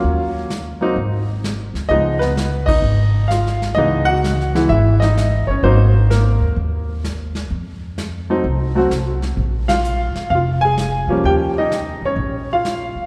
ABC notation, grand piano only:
X:1
M:4/4
L:1/8
Q:"Swing" 1/4=128
K:Db
V:1 name="Grand piano"
z8 | [Ee] [_C_c]2 [Ee]3 [Ff]2 | [Ee] [Gg]3 [_F_f] [Ee]2 [Dd] | c2 [B,B]2 z4 |
z8 | z [Ff]3 [Ff] [Aa]2 z | [=G=g] [Ee]2 [Dd]2 [Ff]3 |]
V:2 name="Grand piano"
[G,B,DF]2 z [G,B,CE] z4 | [F,A,_C] z6 z | [_F,A,_C] z2 [F,A,C_F]3 z2 | [G,B,CE] z6 z |
z3 [G,=A,CE] z [G,A,CG] z2 | z6 z [F,=G,B,D]- | [F,=G,B,D]2 z6 |]